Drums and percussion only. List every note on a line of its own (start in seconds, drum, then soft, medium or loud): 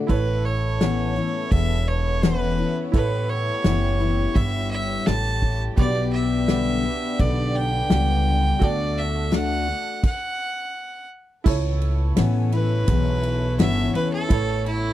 0.09 kick loud
0.09 open hi-hat soft
0.81 snare loud
0.81 open hi-hat soft
1.51 kick loud
1.51 open hi-hat medium
2.23 snare loud
2.23 open hi-hat soft
2.93 kick loud
2.93 open hi-hat medium
3.64 snare loud
3.64 open hi-hat medium
4.35 kick loud
4.35 open hi-hat medium
5.07 snare loud
5.07 open hi-hat medium
5.42 kick medium
5.77 kick loud
5.77 open hi-hat medium
6.48 snare loud
6.48 open hi-hat soft
7.19 kick loud
7.19 open hi-hat medium
7.90 snare loud
7.90 open hi-hat medium
8.62 kick loud
8.62 open hi-hat medium
9.32 snare loud
9.32 open hi-hat soft
10.03 kick loud
10.03 crash medium
11.46 kick loud
11.46 crash loud
11.82 ride medium
12.17 snare loud
12.17 ride medium
12.52 ride medium
12.88 kick loud
12.88 ride medium
13.23 ride medium
13.60 snare loud
13.60 ride medium
13.95 ride medium
14.30 kick loud
14.30 ride medium
14.66 ride medium